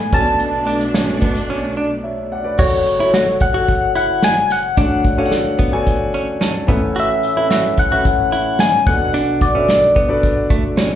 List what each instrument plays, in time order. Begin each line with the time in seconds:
Already playing: string section A3 B3, soft synth lead G#5
0.12 grand piano B1 B2 B3 F#4 A4 D5, string section B2 A3 D4, clean electric guitar C#4, soft synth lead A5, kick, closed hi-hat
0.26 closed hi-hat
0.39 closed hi-hat
0.67 clean electric guitar D4, closed hi-hat
0.81 closed hi-hat
0.94 clean electric guitar C#4, snare
1.21 clean electric guitar B3, kick, closed hi-hat
1.35 closed hi-hat
1.50 clean electric guitar C#4
1.77 clean electric guitar D4
2.04 grand piano C#5 E5
2.32 grand piano D5 F#5
2.44 grand piano B4 D5
2.57 grand piano F#1 F#2 F#4 A4 C#5, clean electric guitar F#4, soft synth lead C#5, kick, crash
2.86 closed hi-hat
2.99 clean electric guitar E4, grand piano F#4 A4 C#5
3.14 clean electric guitar F#4, snare, closed hi-hat
3.40 soft synth lead F#5, kick, closed hi-hat
3.54 grand piano F#4 A4 C#5, clean electric guitar F#4
3.69 kick, closed hi-hat
3.95 clean electric guitar E4, soft synth lead F#5, closed hi-hat
4.22 soft synth lead G#5, snare, closed hi-hat
4.50 soft synth lead F#5, snare, closed hi-hat
4.77 grand piano D2 D3 D4 F#4 A4 C#5 F#5, clean electric guitar D4, kick, closed hi-hat
5.04 kick, closed hi-hat
5.17 clean electric guitar C#4, grand piano D4 F#4 A4 C#5 F5
5.26 grand piano F#5
5.31 snare, closed hi-hat
5.59 clean electric guitar B3, kick, closed hi-hat
5.72 grand piano D4 F#4 A4 C#5 G#5
5.87 kick, closed hi-hat
6.14 clean electric guitar C#4, closed hi-hat
6.41 clean electric guitar C#4, grand piano A5, snare, closed hi-hat
6.67 grand piano A1 A2 C#4 E4 A4 B4 E5, clean electric guitar B3, kick, closed hi-hat
6.96 clean electric guitar F#4, soft synth lead E5, closed hi-hat
7.23 closed hi-hat
7.36 grand piano C#4 E4 A4 B4 E5, clean electric guitar E4
7.50 clean electric guitar F#4, snare, closed hi-hat
7.77 soft synth lead F#5, kick, closed hi-hat
7.92 grand piano C#4 E4 A4 B4 E5, clean electric guitar F#4
8.05 kick, closed hi-hat
8.32 clean electric guitar E4, closed hi-hat
8.59 soft synth lead G#5, snare, closed hi-hat
8.87 grand piano B1 B2 D4 F#4 A4 B4 F#5, soft synth lead F#5, kick, closed hi-hat
9.14 clean electric guitar D4, closed hi-hat
9.41 soft synth lead D5, kick, closed hi-hat
9.54 clean electric guitar C#4, grand piano D4 F#4 A4 B4 E5
9.69 snare, closed hi-hat
9.96 clean electric guitar B3, kick, closed hi-hat
10.08 grand piano D4 F#4 A4 B4 D5
10.23 kick, closed hi-hat
10.50 clean electric guitar A3, kick, closed hi-hat
10.77 clean electric guitar C#4, snare, closed hi-hat